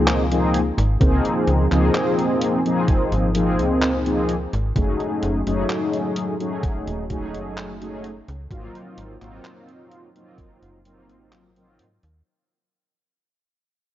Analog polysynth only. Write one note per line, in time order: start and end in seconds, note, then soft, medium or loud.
0.00 0.25 F3 medium
0.00 0.25 A#3 medium
0.00 0.25 C4 medium
0.00 0.26 D#4 medium
0.00 0.26 G#4 medium
0.30 0.59 F3 medium
0.30 0.60 A#3 medium
0.30 0.60 C4 medium
0.30 0.60 D#4 medium
0.30 0.60 G#4 medium
1.00 1.65 F3 medium
1.00 1.66 A#3 medium
1.00 1.66 C4 medium
1.00 1.66 D#4 medium
1.00 1.66 G#4 loud
1.71 2.59 F3 medium
1.71 2.60 A#3 medium
1.71 2.60 C4 medium
1.71 2.60 D#4 medium
1.71 2.60 G#4 loud
2.65 3.29 F3 medium
2.65 3.30 A#3 medium
2.65 3.30 C4 medium
2.65 3.30 D#4 medium
2.65 3.30 G#4 medium
3.34 4.00 F3 medium
3.34 4.00 A#3 medium
3.34 4.00 C4 medium
3.34 4.01 D#4 medium
3.34 4.01 G#4 medium
4.05 4.34 F3 medium
4.05 4.34 A#3 medium
4.05 4.35 C4 medium
4.05 4.35 D#4 medium
4.05 4.35 G#4 medium
4.75 5.41 F#3 medium
4.75 5.41 A3 medium
4.75 5.41 C#4 medium
4.75 5.41 D#4 medium
4.75 5.41 G#4 loud
5.46 6.34 F#3 medium
5.46 6.34 A3 medium
5.46 6.35 C#4 medium
5.46 6.35 D#4 medium
5.46 6.35 G#4 loud
6.39 7.04 F#3 medium
6.39 7.04 A3 medium
6.39 7.05 C#4 medium
6.39 7.05 D#4 medium
6.39 7.05 G#4 medium
7.09 7.75 F#3 medium
7.09 7.75 A3 medium
7.09 7.75 C#4 medium
7.09 7.75 D#4 medium
7.09 7.76 G#4 medium
7.80 8.09 F#3 medium
7.80 8.09 A3 medium
7.80 8.10 C#4 medium
7.80 8.10 D#4 medium
7.80 8.10 G#4 medium
8.50 9.16 F#3 medium
8.50 9.16 A#3 medium
8.50 9.16 C4 medium
8.50 9.16 D#4 medium
8.50 9.16 F4 loud
9.21 10.09 F#3 medium
9.21 10.09 A#3 medium
9.21 10.10 C4 medium
9.21 10.10 D#4 medium
9.21 10.10 F4 loud
10.15 10.79 F#3 medium
10.15 10.80 A#3 medium
10.15 10.80 C4 medium
10.15 10.80 D#4 medium
10.15 10.80 F4 medium
10.85 11.50 F#3 medium
10.85 11.50 A#3 medium
10.85 11.50 C4 medium
10.85 11.51 D#4 medium
10.85 11.51 F4 medium
11.56 11.84 F#3 medium
11.56 11.85 A#3 medium
11.56 11.85 C4 medium
11.56 11.85 D#4 medium
11.56 11.85 F4 medium